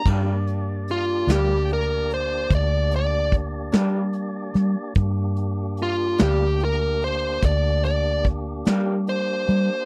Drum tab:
CC |x-----------|------------|
HH |-xxxxxxxxxxx|xxxxxxxxxxxx|
SD |---o-----o-o|---o-----o--|
BD |o-----o-o---|o-----o-o---|